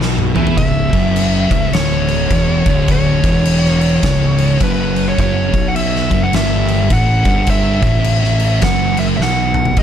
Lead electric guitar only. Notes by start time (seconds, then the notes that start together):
0.57 E5
1.73 C#5
2.91 C#5
4.63 B4
5.08 C#5
5.20 C#5
5.68 F#5
5.76 E5
6.24 F#5
6.35 E5
6.93 F#5
7.50 E5
8.64 F#5
8.99 E5
9.17 E5
9.23 F#5
9.79 E5